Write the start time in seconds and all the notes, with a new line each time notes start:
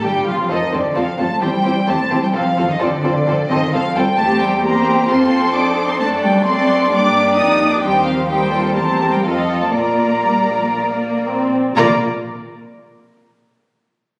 0.02 G1 G3 G4 G5
0.26 F1 F3 F4 F5
0.49 F2 D#3 C4 F4 A4 C5 D#5
0.71 F2 D3 C4 F4 A4 C5 D5
0.95 F2 F3 C4 F4 A4 C5 F5
1.18 F2 A3 C4 F4 A4 C5 A5
1.41 E2 G3 C4 E4 G4 C5 G5
1.63 E2 C4 E4 G4 C5
1.87 E2 A3 C4 E4 G4 C5 A5
2.08 E2 C4 E4 G4 C5
2.22 G3 G5
2.33 F2 F3 C4 F4 A4 C5 F5
2.57 F2 C4 F4 A4 C5
2.68 D#3 D#5
2.80 F2 D3 C4 F4 A4 C5 D5
3.03 F2 C4 F4 A4 C5
3.26 F2 C4 F4 A4 C5
3.49 F2 D#3 C4 F4 A4 C5 D#5
3.71 F2 F3 C4 F4 A4 C5 F5
3.95 F2 G3 C4 F4 A4 C5 G5
4.17 E2 A3 C4 G4 C5 A5
4.40 G3 G5
4.63 A#3 C4 G4 C5 A#5
5.08 F2 C4 F4 A4 C5 C6
5.54 D4 D#4 D6
5.89 C4 C6
5.99 F#2 A3 D4 A4 D5 A5
6.22 G3 G5
6.45 A3 C4 D4 A4 D5 C6
6.90 G2 A#3 D4 G4 D5 D6
7.36 F2 D#4 D#6
7.70 D4 D6
7.81 D#2 G3 C4 D#4 G4 C5 G5
8.05 F3 F5
8.28 G3 C4 D#4 G4 C5 G5
8.51 F4 A4
8.75 E2 A3 C4 G4 A#4 C5 A5
9.12 G3 G5
9.23 F2 F3 C4 F4 A4 D#5 F5
9.61 A3 A5
9.72 A#1 A#3 F4 A#4 D5 A#5
10.25 G3
10.50 F3
10.76 A#3
11.26 C4
11.76 A#1 A#3 F4 A#4 D5 A#5